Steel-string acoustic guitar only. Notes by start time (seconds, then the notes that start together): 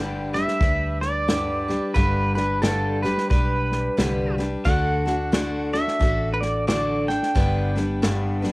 Already playing: G2 D3 G3 D4 G4 B4
0.33 G3 D4 G4 B4
0.60 G3 D4 G4 B4
1.28 G2 D3 G3 D4 G4 B4
1.68 G3 D4 G4 B4
1.95 G2 D3 G3 D4 G4 B4
2.35 G3 D4 G4 B4
2.62 G2 D3 G3 D4 G4 B4
3.03 G3 D4 G4 B4
3.30 G3 D4 G4 B4
3.97 G2 D3 G3 D4 G4 B4
4.38 G3 D4 G4 B4
4.65 D3 A3 D4 F#4 A4
5.05 D4 F#4 A4
5.32 D3 A3 D4 F#4 A4
5.73 D4 F#4 A4
5.99 A3 D4 F#4 A4
6.67 D3 A3 D4 F#4 A4
7.08 D4 A4
7.35 G2 D3 G3 B3 D4 B4
7.75 G3 B3 D4 B4
8.02 G2 D3 G3 B3 D4 B4
8.42 G3 B3 D4 B4